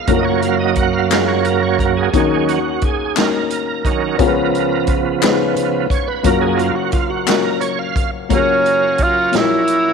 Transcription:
Already playing: C#2 C#3 G#3 B3 C#4 F4 G#4 A#4
0.07 F#1 F#2 F#3 A#3 C#4 F4 F#4 A4 A#4, kick, closed hi-hat
0.17 A#4 D#5
0.25 C#5
0.41 F5, closed hi-hat
0.59 D#5
0.76 F#5, kick, closed hi-hat
0.93 F5
1.10 A#3 C#4 F4 F#4 G#4, snare, clap, closed hi-hat
1.28 C#5
1.45 A#4, closed hi-hat
1.62 C#5
1.79 A#4, kick, closed hi-hat
1.97 G#4
2.13 D#2 D#3 F#3 A#3 C#4 D#4 F#4 A#4, kick, closed hi-hat
2.49 F#4, closed hi-hat
2.82 G#4, kick, closed hi-hat
3.16 A#3 C#4 D#4 F#4 A#4, snare, clap, closed hi-hat
3.50 closed hi-hat
3.85 D#3 F#3 C#4, kick, closed hi-hat
4.18 C#2 C#3 F3 B3 C#4 F4 G#4 A#4, kick, closed hi-hat
4.27 B4
4.55 closed hi-hat
4.87 kick, closed hi-hat
5.21 B3 C#4 D#4 G#4 B4, snare, clap, closed hi-hat
5.28 F4
5.56 C#3 F3 B3, closed hi-hat
5.90 C#5, kick, closed hi-hat
6.08 B4
6.23 F#1 F#2 F#3 A#3 C#4 F4 F#4 A#4, kick, closed hi-hat
6.28 A#3
6.41 G#4
6.57 F4, closed hi-hat
6.75 F#4
6.92 F4, kick, closed hi-hat
7.10 F#4
7.26 A#3 C#4 F4 F#4 A#4, snare, clap, closed hi-hat
7.44 A#4
7.60 C#5, closed hi-hat
7.79 F5
7.96 kick, closed hi-hat
8.29 F#1 F#2 F#3 A#3 C#4 F4 F#4 G#4 A#4 F5, kick, closed hi-hat
8.34 C#4
8.38 A#4
8.66 closed hi-hat
8.98 kick, closed hi-hat
9.03 F4
9.32 A#1 A#2 F#3 A#3 C#4 E4 F#4 G#4, snare, closed hi-hat
9.37 E4
9.41 A#4
9.67 closed hi-hat

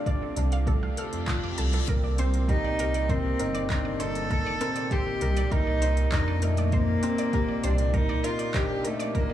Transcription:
Already playing: C3 A3 D4 F4 A4 D5
0.06 D5, kick, closed hi-hat
0.36 C2 A4 D5, closed hi-hat
0.52 F5, closed hi-hat
0.67 A3 A4, kick, closed hi-hat, reverse cymbal
0.83 F5
0.97 A4 F6, closed hi-hat
1.13 F2, closed hi-hat
1.27 F4 D6, kick, clap, closed hi-hat
1.43 D6
1.58 C2 A4 A5, closed hi-hat
1.73 A4, closed hi-hat
1.88 C2 A#3 A#4, kick, closed hi-hat
2.04 D5
2.15 A#2 C4, closed hi-hat
2.19 C5
2.34 closed hi-hat
2.48 D#4 G4 A#4, kick, closed hi-hat
2.64 D5
2.79 C2 G4 A#4, closed hi-hat
2.94 D#3 D5, closed hi-hat
3.09 A#3 C4 C5, kick, closed hi-hat
3.39 G1 D#4 A#4, closed hi-hat
3.54 D5, closed hi-hat
3.70 C4 A#4, kick, clap, closed hi-hat
3.85 D5
4.00 D#4 A4 C5, closed hi-hat
4.15 closed hi-hat
4.30 A#3 A#4, kick, closed hi-hat
4.46 D5
4.61 C4 A#4, closed hi-hat
4.76 D5, closed hi-hat
4.91 G4 C5, kick, closed hi-hat
5.21 C2 G4 A#4, closed hi-hat
5.37 D5, closed hi-hat
5.52 C2 A#3 D#4 A#4, kick, closed hi-hat
5.67 D5
5.82 D#4 C5, closed hi-hat
5.97 closed hi-hat
6.12 F2 D4 D#4 A#4, kick, clap, closed hi-hat
6.28 D5
6.42 A3 D#4 A#4, closed hi-hat
6.57 D5, closed hi-hat
6.72 A#3 C5, kick, closed hi-hat
7.03 C4 A#4, closed hi-hat
7.18 D5, closed hi-hat
7.33 G4 A#4, kick, closed hi-hat
7.49 D5
7.63 C2 D4 G4 C5, closed hi-hat
7.78 closed hi-hat
7.94 A#3 D#4 A#4, kick, closed hi-hat
8.09 D5
8.24 D#4 F4 A#4, closed hi-hat
8.39 D5, closed hi-hat
8.54 D4 G4 C5, kick, clap, closed hi-hat
8.84 A3 D#4 A#4, closed hi-hat
8.99 D5, closed hi-hat
9.15 A#3 A#4, kick, closed hi-hat
9.30 D5

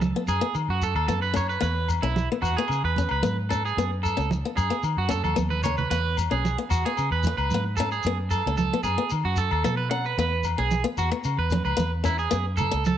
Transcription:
Already playing: C#2
0.01 muted clean electric guitar stroke, high conga, shekere
0.16 B3
0.28 F#2 G#4, muted conga, low agogo, shekere
0.41 B3
0.55 D#3, muted conga, low agogo, shekere
0.69 F#2 F#4
0.82 A4, shekere
0.95 D#2 A4, low agogo
1.08 F#2 B3 A4, high conga, shekere
1.22 B4
1.34 C#4 C#5, low agogo, shekere
1.49 B4, shekere
1.60 E2 B3 B4, muted conga, shekere
1.88 muted conga, low agogo, shekere
2.02 B1 C#4 E4
2.16 high conga, shekere
2.32 B3
2.42 E2 F#4, muted conga, low agogo, shekere
2.57 B3 G#4
2.68 C#3, muted conga, low agogo, shekere
2.84 E2 B4
2.96 C#4, high conga, shekere
3.09 C#2 B4, low agogo
3.23 G#2 B3, high conga, shekere
3.49 C#4 A4, low agogo, shekere
3.65 G#4, shekere
3.77 F#2 B3, muted conga, shekere
4.03 A4, muted conga, low agogo, shekere
4.17 C#2 C#4, shekere
4.31 high conga, shekere
4.45 B3
4.57 F#2 G#4, muted conga, low agogo, shekere
4.70 B3, shekere
4.83 D#3, muted conga, low agogo, shekere
4.97 F#2 F#4
5.09 C#4 A4, shekere
5.24 D#2 A4, high conga, low agogo, shekere
5.36 D#2 B3, high conga, shekere
5.50 B4, high conga
5.63 C#4 C#5, low conga, low agogo, shekere
5.77 B4, low conga, shekere
5.90 E2 B3 B4, shekere
6.17 muted conga, low agogo, shekere
6.31 B1 C#4 G#4
6.45 high conga, shekere
6.58 B3
6.70 E2 F#4, muted conga, low agogo, shekere
6.85 B3 G#4
6.97 C#3, muted conga, low agogo, shekere
7.11 E2 B4
7.23 C#4, high conga, shekere
7.37 C#2 B4, low agogo
7.51 G#2 B3, high conga, shekere
7.77 C#4 A4, low agogo, shekere
7.92 G#4, shekere
8.03 F#2 B3, muted conga, shekere
8.31 A4, muted conga, low agogo, shekere
8.46 C#2 C#4
8.57 A4, high conga, shekere
8.73 B3
8.83 F#2 G#4, muted conga, low agogo, shekere
8.98 B3
9.10 D#3, muted conga, low agogo, shekere
9.25 F#2 F#4
9.36 A4, shekere
9.51 D#2 A4, low agogo
9.64 B2 B3 A4, high conga, shekere
9.77 B4
9.91 C#4 F#5, low agogo
10.05 B4, shekere
10.18 E2 B3 B4, muted conga, shekere
10.44 muted conga, low agogo, shekere
10.58 B1 C#4 G#4
10.71 high conga, shekere
10.84 B3
10.98 E2 F#4, muted conga, low agogo, shekere
11.11 B3, muted clean electric guitar stroke
11.24 C#3, muted conga, low agogo, shekere
11.38 E2 B4
11.50 C#4, high conga, shekere
11.65 C#2 B4, low agogo
11.77 E2 B3, high conga, shekere
12.04 C#4 E4, low agogo, shekere
12.18 G#4, shekere
12.31 F#2 B3, muted conga, shekere
12.57 A4, muted conga, low conga, low agogo, shekere
12.71 C#2, muted steel-string acoustic guitar stroke, shekere
12.85 A4, high conga, shekere

